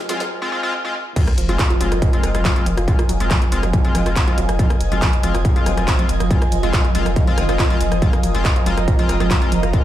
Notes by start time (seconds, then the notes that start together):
Already playing: F3 F4 A#4 D#5 G#5
0.09 F#3 G#3 C4 F4, snare, open hi-hat
0.20 snare, closed hi-hat
0.42 G#3 C4 F4
0.52 G#3 C4 F4
0.63 G#3 C4 F4
0.85 G#3 C4 F4
1.16 F3 G#3 C4 F4, kick, closed hi-hat, crash, sub drop
1.27 cross-stick, closed hi-hat
1.38 F1 F3 D#5, open hi-hat
1.49 F1 G#3 C4 F4, closed hi-hat
1.56 A#4 G#5, kick, clap, closed hi-hat
1.70 F4, closed hi-hat
1.81 F1 F#3 G#3 C4 F4, open hi-hat
1.92 F1, cross-stick, closed hi-hat
2.02 F3, kick, closed hi-hat
2.13 F3 G#3 C4 F4, closed hi-hat
2.23 F1, cross-stick, open hi-hat
2.35 F1 F#3 G#3 C4 F4, cross-stick, closed hi-hat
2.45 F3, kick, clap, closed hi-hat
2.56 G#3 C4 F4, closed hi-hat
2.66 F1 F3, open hi-hat
2.77 F1 F4, cross-stick, closed hi-hat
2.88 G#3 C4 F4, kick, closed hi-hat
2.99 F4, cross-stick, closed hi-hat
3.09 F1 F#3, open hi-hat
3.20 F1 G#3 C4 F4, closed hi-hat
3.31 F3, kick, clap, closed hi-hat
3.42 F3, closed hi-hat
3.52 F1 G#3 C4 F4, open hi-hat
3.63 F1 F#3, cross-stick, closed hi-hat
3.73 F3, kick, closed hi-hat
3.85 G#3 C4 F4, closed hi-hat
3.95 F1 F3, cross-stick, open hi-hat
4.06 F1 G#3 C4 F4, cross-stick, closed hi-hat
4.16 kick, clap, closed hi-hat
4.27 G#3 C4 F4, closed hi-hat
4.38 F1 F#3, open hi-hat
4.49 F1, cross-stick, closed hi-hat
4.59 F3 G#3 C4 F4, kick, closed hi-hat
4.70 F3, cross-stick, closed hi-hat
4.81 F1, open hi-hat
4.92 F1 F#3 G#3 C4 F4, closed hi-hat
5.02 F3, kick, clap, closed hi-hat
5.13 closed hi-hat
5.23 F1 F3 G#3 C4 F4, open hi-hat
5.35 F1 F4, cross-stick, closed hi-hat
5.45 kick, closed hi-hat
5.56 G#3 C4 F4, closed hi-hat
5.66 F1 F#3, cross-stick, open hi-hat
5.77 F1 G#3 C4 F4, cross-stick, closed hi-hat
5.88 F3, kick, clap, closed hi-hat
5.99 F3 G#3 C4 F4, closed hi-hat
6.09 F1, open hi-hat
6.20 F1 F#3, cross-stick, closed hi-hat
6.31 F3 G#3 C4 F4, kick, closed hi-hat
6.42 cross-stick, closed hi-hat
6.52 F1 F3, open hi-hat
6.63 F1 G#3 C4 F4, closed hi-hat
6.73 kick, clap, closed hi-hat
6.85 F4, closed hi-hat
6.95 F1 F#3 G#3 C4 F4, open hi-hat
7.06 F1, cross-stick, closed hi-hat
7.16 F3, kick, closed hi-hat
7.27 F3 G#3 C4 F4, closed hi-hat
7.38 F1 D#3, cross-stick, open hi-hat
7.49 F1 G#3 C4 F4, cross-stick, closed hi-hat
7.59 F4, kick, clap, closed hi-hat
7.70 G#3 C4 F4, closed hi-hat
7.81 F1 F3, open hi-hat
7.92 F1 F3, cross-stick, closed hi-hat
8.02 F3 G#3 C4 F4, kick, closed hi-hat
8.13 cross-stick, closed hi-hat
8.23 F1 F3, open hi-hat
8.35 F1 G#3 C4 F4, closed hi-hat
8.42 A#5, kick, clap, closed hi-hat
8.56 F4, closed hi-hat
8.66 F1 F#3 G#3 C4 F4, open hi-hat
8.77 F1, cross-stick, closed hi-hat
8.88 F3, kick, closed hi-hat
8.99 F3 G#3 C4 F4, closed hi-hat
9.09 F1, cross-stick, open hi-hat
9.20 F1 F#3 G#3 C4 F4, cross-stick, closed hi-hat
9.31 F3, kick, clap, closed hi-hat
9.42 G#3 C4 F4, closed hi-hat
9.52 F1 F3, open hi-hat
9.63 F1 F4, cross-stick, closed hi-hat
9.73 G#3 C4 F4, kick, closed hi-hat